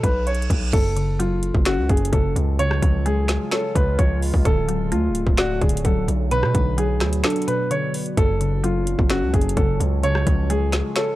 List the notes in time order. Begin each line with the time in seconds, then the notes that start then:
Already playing: reverse cymbal
0.03 B1 B4, kick, closed hi-hat
0.27 C#5, closed hi-hat
0.34 closed hi-hat
0.42 closed hi-hat
0.50 B1, kick, closed hi-hat
0.73 F#1 F#2 F#3 C#4 A4, kick, closed hi-hat, crash
0.96 C#3, closed hi-hat
1.19 F#3 F4, closed hi-hat
1.43 closed hi-hat
1.55 F#1, kick
1.65 C#4 F#4, finger snap, snare, closed hi-hat
1.78 C#2
1.89 F#1 F#2 G#4, kick, closed hi-hat
1.97 closed hi-hat
2.05 closed hi-hat
2.13 F#1 C#3 A4, kick, closed hi-hat
2.36 C#2, closed hi-hat
2.59 C#3 G#3 F4 C#5, closed hi-hat
2.71 cross-stick
2.82 C#2 F3, kick, closed hi-hat
3.06 G#3 G#4, closed hi-hat
3.28 finger snap, snare, closed hi-hat
3.52 A4 C#5, finger snap, snare, closed hi-hat
3.75 C#2 C#3 B4, kick, closed hi-hat
3.99 C#2 F3 C#5, kick, closed hi-hat
4.22 open hi-hat
4.34 C#2, kick
4.45 D1 D3 F#3 A3 A4, kick, closed hi-hat
4.68 F#3, closed hi-hat
4.92 D2 A3 F4, closed hi-hat
5.09 D1
5.15 closed hi-hat
5.27 D1, kick
5.38 F#4 D5, finger snap, snare, closed hi-hat
5.62 D1 D3 G#4, kick, closed hi-hat
5.69 closed hi-hat
5.77 closed hi-hat
5.85 D1 F#3 A4, kick, closed hi-hat
6.08 B1, closed hi-hat
6.31 B2 B3 B4 D5, closed hi-hat
6.43 B2, cross-stick
6.54 B1 D3, kick, closed hi-hat
6.78 F#3 G#4, closed hi-hat
7.00 D2, finger snap, cross-stick, snare, closed hi-hat
7.13 closed hi-hat
7.24 D4 A4, finger snap, snare, closed hi-hat
7.30 closed hi-hat
7.36 closed hi-hat
7.42 closed hi-hat
7.48 B2 B4, closed hi-hat
7.71 D3 C#5, closed hi-hat
7.94 closed hi-hat, open hi-hat
8.06 closed hi-hat
8.17 F#1 F#2 F#3 C#4 A4, kick, closed hi-hat
8.41 C#3, closed hi-hat
8.64 F#3 F4, closed hi-hat
8.87 closed hi-hat
8.99 F#1, kick
9.10 C#4 F#4, finger snap, snare, closed hi-hat
9.22 C#2
9.34 F#1 F#2 G#4, kick, closed hi-hat
9.41 closed hi-hat
9.49 closed hi-hat
9.57 F#1 C#3 A4, kick, closed hi-hat
9.80 C#2, closed hi-hat
10.03 C#3 G#3 F4 C#5, closed hi-hat
10.15 cross-stick
10.27 C#2 F3, kick, closed hi-hat
10.50 G#3 G#4, closed hi-hat
10.72 finger snap, snare, closed hi-hat
10.96 A4 C#5, finger snap, snare, closed hi-hat